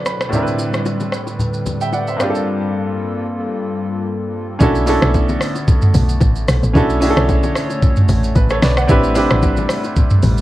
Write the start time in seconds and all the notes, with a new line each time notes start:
Already playing: B2 D3 F#3 C#4 D4 E4 G4 A4 B4 C#5 D5
0.06 B5, cross-stick, shaker
0.20 cross-stick, shaker
0.29 A2 G3 C4, low conga, shaker
0.33 D4 E4 A#4
0.42 B4
0.47 shaker
0.59 high bongo, shaker
0.73 cross-stick, low bongo, shaker
0.86 high bongo, shaker
1.00 low bongo, shaker
1.12 cross-stick, shaker
1.27 high bongo, shaker
1.39 low conga, shaker
1.54 shaker
1.66 low bongo, low conga, shaker
1.81 E5 G5, shaker
1.93 D5 F#5, high bongo, shaker
2.07 C5 E5, shaker
2.16 G2 A#3 C4 F4 A4, cross-stick, shaker
2.21 D4 F4 G4
2.30 A4
2.35 shaker
4.59 B1 D3 A3 B3 C#4 D4 E4 F#4 A4, kick, low conga, shaker
4.75 shaker
4.86 C#4 D4 E4 F#4 A4, open hi-hat, high bongo, shaker
5.02 B1, cross-stick, low bongo, shaker
5.14 kick, high bongo, shaker
5.29 low bongo, shaker
5.40 cross-stick, open hi-hat, low bongo, shaker
5.55 high bongo, shaker
5.68 kick, low conga, shaker
5.82 mid tom, shaker
5.94 B1, open hi-hat, low bongo, low conga, shaker
6.09 shaker
6.21 A1, kick, high bongo, shaker
6.36 shaker
6.48 B1, cross-stick, open hi-hat, shaker
6.63 A1, shaker
6.73 B1 C#4 D4 E4 F#4 A4 C#5, kick, low conga, shaker
6.90 shaker
7.00 C#4 D4 E4 F#4 G#4, open hi-hat, high bongo, shaker
7.10 A4
7.16 B1, cross-stick, low bongo, shaker
7.29 kick, high bongo, shaker
7.43 low bongo, shaker
7.55 cross-stick, open hi-hat, low bongo, shaker
7.70 high bongo, shaker
7.82 kick, low conga, shaker
7.96 mid tom, shaker
8.09 A1, open hi-hat, low bongo, low conga, shaker
8.24 shaker
8.35 A1 B4, kick, high bongo, shaker
8.50 A4 C#5, cross-stick, shaker
8.62 B1 B4 D5, cross-stick, snare, open hi-hat, shaker
8.77 D5 F#5, cross-stick, shaker
8.87 A1 C3 G3 C4 D4 E4 G4 B4, kick, low conga, shaker
9.04 shaker
9.14 C4 D4 E4 G4 B4, open hi-hat, high bongo, shaker
9.30 A1, cross-stick, low bongo, shaker
9.43 kick, high bongo, shaker
9.57 low bongo, shaker
9.69 cross-stick, open hi-hat, low bongo, shaker
9.84 high bongo, shaker
9.96 kick, low conga, shaker
10.10 mid tom, shaker
10.23 A1, open hi-hat, low bongo, low conga, shaker
10.38 shaker